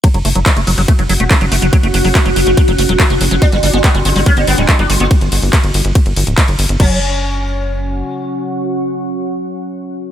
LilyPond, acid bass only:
\new Staff \with { instrumentName = "Acid bass" } { \clef bass \time 4/4 \key g \lydian \tempo 4 = 142 fis16 fis16 a16 fis16 fis16 a16 fis16 fis16 a16 fis16 fis16 a16 fis16 fis16 a16 fis16 | fis16 a16 fis16 fis16 a16 fis16 fis16 a16 fis16 fis16 a16 fis16 fis16 a16 fis16 fis16 | b16 g16 g16 b16 g16 g16 b16 g16 g16 b16 g16 g16 b16 g16 g16 b16 | r1 |
fis8 r2. r8 | r1 | }